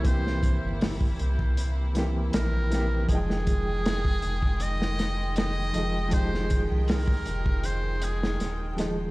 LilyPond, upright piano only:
\new Staff \with { instrumentName = "Upright piano" } { \time 4/4 \key f \minor \tempo 4 = 79 <e bes c' g'>2~ <e bes c' g'>8 <e bes c' g'>4 <e bes c' g'>8 | <f aes ees' g''>2~ <f aes ees' g''>8 r4 <f aes ees' aes'>8 | <f aes ees' g'>2~ <f aes ees' g'>8 r4 <f aes ees' aes'>8 | }